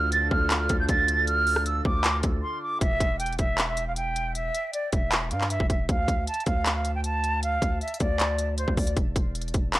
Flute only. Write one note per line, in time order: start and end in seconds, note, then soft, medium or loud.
0.12 0.28 A6 medium
0.31 0.58 F6 medium
0.60 0.76 F6 medium
0.80 0.88 G6 medium
0.89 1.25 A6 medium
1.27 1.63 F6 loud
1.66 1.82 E6 medium
1.85 2.17 D6 medium
2.42 2.59 C6 medium
2.62 2.78 D6 medium
2.81 3.17 E5 loud
3.19 3.36 G5 medium
3.38 3.66 E5 medium
3.68 3.84 E5 medium
3.88 3.95 F5 medium
3.96 4.33 G5 medium
4.35 4.71 E5 loud
4.74 4.90 D5 medium
4.93 5.29 E5 medium
5.31 5.47 F5 medium
5.50 5.67 E5 loud
5.70 5.86 E5 medium
5.89 6.25 F5 loud
6.28 6.44 A5 medium
6.46 6.73 F5 medium
6.75 6.91 F5 medium
6.95 7.03 G5 medium
7.04 7.40 A5 medium
7.43 7.79 F5 loud
7.82 7.98 E5 medium
8.00 8.55 D5 medium
8.58 8.74 C5 medium
8.78 8.94 D5 medium